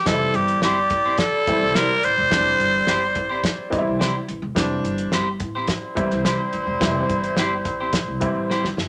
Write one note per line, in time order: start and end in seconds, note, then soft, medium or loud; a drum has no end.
0.05 0.30 F1 loud
0.05 0.67 E3 medium
0.05 4.24 G3 medium
0.05 0.68 G3 medium
0.05 0.68 C4 medium
0.05 0.13 D#4 medium
0.05 4.24 E4 medium
0.05 0.37 A4 medium
0.05 4.24 D5 medium
0.05 kick medium
0.05 snare medium
0.05 closed hi-hat medium
0.14 0.72 E4 medium
0.34 0.58 G1 medium
0.34 0.62 G4 medium
0.34 closed hi-hat medium
0.48 closed hi-hat medium
0.62 0.86 G1 medium
0.62 0.77 C4 medium
0.62 0.78 E4 loud
0.62 1.20 G4 medium
0.62 0.78 G4 medium
0.62 0.78 C5 medium
0.62 snare loud
0.62 closed hi-hat medium
0.90 1.26 A1 medium
0.90 kick loud
0.90 closed hi-hat medium
1.05 1.17 C4 soft
1.05 1.17 E4 soft
1.05 1.16 G4 soft
1.05 1.16 C5 medium
1.17 1.77 A4 medium
1.17 kick medium
1.17 snare loud
1.17 closed hi-hat medium
1.47 1.59 A#1 medium
1.47 1.93 E3 medium
1.47 1.94 G3 medium
1.47 1.94 C4 medium
1.47 1.94 E4 medium
1.47 kick loud
1.47 closed hi-hat medium
1.62 1.85 C2 medium
1.75 1.90 C4 medium
1.75 1.90 E4 medium
1.75 1.90 G4 medium
1.75 2.06 A#4 loud
1.75 1.91 C5 medium
1.75 snare loud
1.75 closed hi-hat loud
2.03 2.15 A1 medium
2.03 3.72 C5 loud
2.03 closed hi-hat medium
2.18 2.29 E1 loud
2.30 2.55 F1 medium
2.30 2.92 E3 medium
2.30 2.93 G3 medium
2.30 2.93 C4 medium
2.30 2.93 D4 medium
2.30 kick loud
2.30 snare loud
2.30 closed hi-hat medium
2.59 2.83 G1 medium
2.59 closed hi-hat medium
2.87 3.11 G1 medium
2.87 3.02 C4 medium
2.87 3.02 E4 medium
2.87 3.03 G4 medium
2.87 3.03 C5 medium
2.87 snare medium
2.87 closed hi-hat medium
3.15 3.51 A1 medium
3.15 kick medium
3.15 closed hi-hat medium
3.29 3.42 C4 soft
3.29 3.42 E4 medium
3.29 3.41 G4 medium
3.29 3.41 C5 medium
3.44 kick medium
3.44 snare loud
3.44 closed hi-hat medium
3.70 3.84 A#1 medium
3.70 4.17 E3 medium
3.70 4.17 G3 medium
3.70 4.17 C4 medium
3.70 3.79 D#4 medium
3.70 kick loud
3.70 closed hi-hat medium
3.78 4.21 E4 medium
3.87 4.10 C2 medium
4.00 4.14 C4 medium
4.00 4.15 E4 medium
4.00 4.15 G4 medium
4.00 4.15 C5 medium
4.00 snare loud
4.00 closed hi-hat loud
4.28 4.40 A1 medium
4.28 closed hi-hat medium
4.42 4.54 E1 loud
4.55 4.80 F1 medium
4.55 5.17 E3 medium
4.55 5.17 G3 medium
4.55 5.18 C4 medium
4.55 5.18 D4 medium
4.55 kick loud
4.55 snare loud
4.55 closed hi-hat medium
4.84 5.07 G1 medium
4.84 closed hi-hat medium
4.98 closed hi-hat medium
5.12 5.36 G1 medium
5.12 5.27 C4 medium
5.12 5.27 E4 medium
5.12 5.27 G4 loud
5.12 5.28 C5 loud
5.12 snare medium
5.12 closed hi-hat medium
5.40 5.76 A1 medium
5.40 kick medium
5.40 closed hi-hat medium
5.55 5.67 C4 medium
5.55 5.67 E4 medium
5.55 5.66 G4 soft
5.55 5.66 C5 medium
5.67 8.74 G3 medium
5.67 8.74 E4 loud
5.67 8.74 C5 loud
5.67 kick medium
5.67 snare medium
5.67 closed hi-hat medium
5.95 6.09 A#1 medium
5.95 6.42 E3 medium
5.95 6.43 G3 medium
5.95 6.43 C4 medium
5.95 6.43 E4 loud
5.95 kick loud
5.95 closed hi-hat medium
6.11 6.35 C2 medium
6.11 snare soft
6.25 6.39 C4 medium
6.25 6.40 E4 medium
6.25 6.40 G4 medium
6.25 6.40 C5 medium
6.25 snare loud
6.25 closed hi-hat loud
6.53 6.65 A1 medium
6.53 closed hi-hat medium
6.67 6.79 E1 medium
6.80 7.05 F1 loud
6.80 7.42 E3 medium
6.80 7.42 G3 medium
6.80 7.42 C4 medium
6.80 7.43 E4 loud
6.80 kick loud
6.80 snare loud
6.80 closed hi-hat medium
7.09 7.33 G1 medium
7.09 kick loud
7.09 closed hi-hat medium
7.24 closed hi-hat medium
7.36 7.60 G1 medium
7.36 7.52 C4 medium
7.36 7.52 E4 medium
7.36 7.53 G4 medium
7.36 7.53 C5 medium
7.36 snare loud
7.36 closed hi-hat medium
7.65 7.89 A1 medium
7.65 kick medium
7.65 closed hi-hat medium
7.81 7.92 C4 soft
7.81 7.92 E4 soft
7.81 7.91 G4 soft
7.81 7.91 C5 medium
7.93 8.05 A#1 medium
7.93 kick medium
7.93 snare loud
7.93 closed hi-hat medium
8.08 8.19 C2 medium
8.20 8.67 E3 medium
8.20 8.67 G3 medium
8.20 8.68 C4 medium
8.20 8.68 E4 medium
8.20 kick loud
8.20 closed hi-hat medium
8.34 8.58 A1 medium
8.50 8.64 C4 medium
8.50 8.65 E4 medium
8.50 8.65 G4 medium
8.50 8.65 C5 medium
8.50 snare medium
8.63 8.75 G1 medium
8.63 snare medium
8.77 8.88 F#1 medium
8.77 snare medium